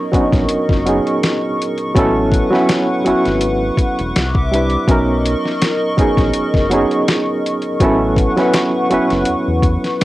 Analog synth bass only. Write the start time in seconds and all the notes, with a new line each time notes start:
0.14 A#1
0.34 A#1
0.51 F#1
0.70 F#1
1.97 A1
3.07 G#1
3.27 G#1
3.78 E1
4.00 E1
4.17 C2
4.89 B1
5.99 A#1
6.18 A#1
6.35 F#1
6.55 F#1
7.81 A1
8.92 F#1
9.12 F#1
9.29 E2
9.48 E2